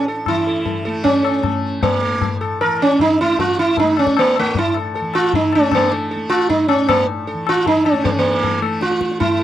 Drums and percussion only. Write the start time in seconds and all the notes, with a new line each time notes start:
0.26 tabla na, tabla ge
0.66 tabla tin, tabla ge
1.05 tabla tin, tabla ge
1.25 tabla na
1.44 tabla na, tabla ge
1.83 tabla tin, tabla ge
2.21 tabla tin, tabla ge
2.41 tabla na
2.61 tabla na
2.99 tabla tin, tabla ge
3.39 tabla tin, tabla ge
3.77 tabla tin, tabla ge
3.97 tabla na
4.07 tabla ke
4.17 tabla na
4.36 tabla na
4.55 tabla tin, tabla ge
4.74 tabla na
4.94 tabla tin
5.14 tabla na
5.33 tabla tin, tabla ge
5.53 tabla na
5.72 tabla na, tabla ge
6.30 tabla na
6.50 tabla tin, tabla ge
6.69 tabla na
6.89 tabla na, tabla ge
7.47 tabla na
7.66 tabla tin, tabla ge
7.85 tabla na
8.05 tabla tin, tabla ge
8.44 tabla tin, tabla ge
8.62 tabla na
8.81 tabla te
8.91 tabla te
9.01 tabla ke
9.11 tabla te
9.21 tabla tin, tabla ge